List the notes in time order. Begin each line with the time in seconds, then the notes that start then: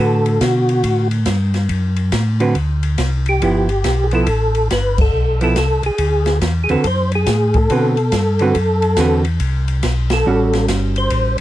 Already playing: D3
0.00 A2 F#4 A4 B4
0.26 ride
0.41 B2 F#4, kick, snare, hi-hat pedal, ride
0.69 ride
0.84 A2, kick, ride
1.11 ride
1.26 G2, kick, snare, hi-hat pedal, ride
1.54 snare, ride
1.69 F#2, kick, ride
1.96 ride
2.12 A2, kick, snare, hi-hat pedal, ride
2.40 D3 C4 F#4 B4, ride
2.55 D2, kick, ride
2.83 ride
2.98 C2, kick, snare, hi-hat pedal, ride
3.26 G4, ride
3.42 G1 F3 B3 E4, kick, ride
3.69 ride
3.84 B1, kick, snare, hi-hat pedal, ride
4.04 G#4
4.11 F3 B3 E4 A4, ride
4.27 A1, kick, ride
4.55 ride
4.71 G1 B4, kick, snare, hi-hat pedal, ride
4.98 A4, kick, crash
5.13 B1
5.41 F3 B3 E4 A4, ride
5.56 C2 A4, kick, snare, hi-hat pedal, ride
5.83 C2 G#4, ride
5.98 D2, kick, ride
6.26 snare, ride
6.42 E2, kick, snare, hi-hat pedal, ride
6.64 G#4
6.69 E2 D3 C4 F#4 A4 B4, ride
6.84 F#2 C5, kick, ride
7.12 G#4, ride
7.26 A2, kick, snare, hi-hat pedal, ride
7.54 A4, kick, ride
7.70 B2 D3 C4 F#4 B4, kick, ride
7.97 ride
8.12 G2, kick, snare, hi-hat pedal, ride
8.39 D3 C4 F#4 B4, ride
8.55 F#2, kick, ride
8.82 ride
8.97 E2 D3 C4 F#4 B4, kick, snare, hi-hat pedal, ride
9.25 ride
9.40 C2, kick, ride
9.68 ride
9.83 B1, kick, snare, hi-hat pedal, ride
10.10 A4, snare, ride
10.26 A1 G3 C#4 F#4
10.53 snare, ride
10.68 G1, kick, snare, hi-hat pedal, ride
10.96 C5, ride
11.10 A1, kick, ride
11.38 ride